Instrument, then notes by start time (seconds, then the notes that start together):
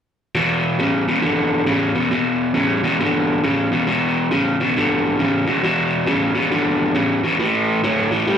overdriven electric guitar
0.35 E2 B2
0.79 E2 C#3
1.08 E2 B2
1.22 E2 D3
1.66 E2 C#3
1.95 E2 B2
2.11 E2 B2
2.54 E2 C#3
2.83 E2 B2
3.00 E2 D3
3.43 E2 C#3
3.72 E2 B2
3.87 E2 B2
4.31 E2 C#3
4.60 E2 B2
4.76 E2 D3
5.19 E2 C#3
5.47 E2 B2
5.63 E2 B2
6.07 E2 C#3
6.34 E2 B2
6.51 E2 D3
6.95 E2 C#3
7.23 E2 B2
7.39 A2 E3
7.84 A2 F#3
8.11 A2 E3
8.27 A2 G3